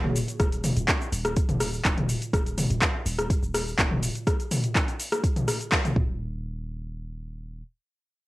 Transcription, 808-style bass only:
0.00 0.22 D#1 medium
0.40 0.71 D#1 loud
0.77 0.85 D#1 loud
1.12 1.43 D#1 loud
1.49 1.80 D#1 medium
1.85 2.16 D#1 medium
2.33 2.64 D#1 loud
2.70 2.78 D#1 loud
3.06 3.37 D#1 loud
3.43 3.73 D#1 medium
3.78 4.09 D#1 loud
5.96 7.62 D#1 medium

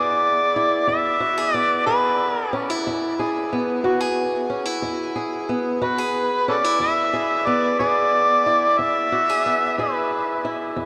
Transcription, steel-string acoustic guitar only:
0.00 0.49 E2 medium
0.00 1.54 B3 medium
0.00 0.56 E4 medium
0.00 1.20 G#4 medium
0.56 2.53 E4 medium
0.87 1.47 E2 medium
1.20 1.38 F#4 medium
1.38 1.86 G#4 medium
1.54 2.56 B3 soft
1.86 2.46 E2 medium
1.86 3.19 G#4 medium
2.53 2.70 C#4 medium
2.70 4.49 E4 soft
2.87 3.46 E2 medium
3.19 3.84 G#4 medium
3.53 5.49 B3 medium
3.84 4.43 E2 medium
3.84 4.00 F#4 medium
4.00 5.14 G#4 medium
4.50 4.65 C#4 medium
4.65 5.81 E4 soft
4.82 5.42 E2 medium
5.16 5.81 G#4 medium
5.49 6.51 B3 medium
5.81 6.41 E2 medium
5.81 5.98 F#4 medium
5.98 7.12 G#4 medium
6.48 6.64 C#4 medium
6.64 8.45 E4 soft
6.80 7.39 E2 medium
7.13 7.80 G#4 medium
7.47 9.44 B3 medium
7.79 8.39 E2 medium
7.79 9.12 G#4 medium
8.46 10.44 E4 medium
8.79 9.38 E2 medium
9.12 9.29 F#4 medium
9.29 9.78 G#4 medium
9.46 9.74 B3 medium
9.78 10.37 E2 medium
9.78 10.86 G#4 medium
10.45 10.86 E4 medium
10.76 10.86 E2 medium

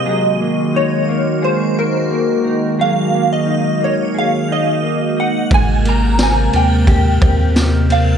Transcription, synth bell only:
0.00 0.78 D#5 loud
0.76 1.45 C#5 loud
1.44 1.78 C5 medium
1.79 2.42 A#4 medium
2.81 3.32 F5 medium
3.33 3.84 D#5 medium
3.84 4.17 C#5 medium
4.18 4.52 F5 medium
4.52 5.21 D#5 medium
5.20 5.53 F#5 medium
5.54 5.88 G#5 loud
5.89 6.22 A#5 loud
6.23 6.56 G#5 medium
6.56 7.19 G5 medium
7.92 8.18 F5 loud

